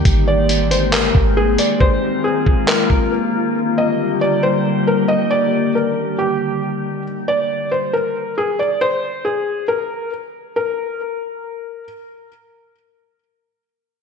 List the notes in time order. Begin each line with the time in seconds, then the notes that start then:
Already playing: D#3 A#3 G4
0.05 G#1 G#3 C4, kick, closed hi-hat
0.28 D5
0.49 closed hi-hat
0.71 C5, closed hi-hat
0.93 A#4, clap, closed hi-hat
1.15 G#1, kick
1.37 G#4
1.58 D5, closed hi-hat
1.80 A#3 F4 C5, kick
2.24 G#4
2.46 kick
2.68 A#4, clap
2.90 kick
3.56 D3 G3 G4
3.78 D#5
4.21 D5
4.43 C5
4.87 A#4
5.08 D#5
5.31 D5
5.75 A#4
6.18 G4
7.28 D5
7.71 C5
7.93 A#4
8.38 G#4
8.59 D5
8.81 C5
9.25 G#4
9.68 A#4
10.56 A#4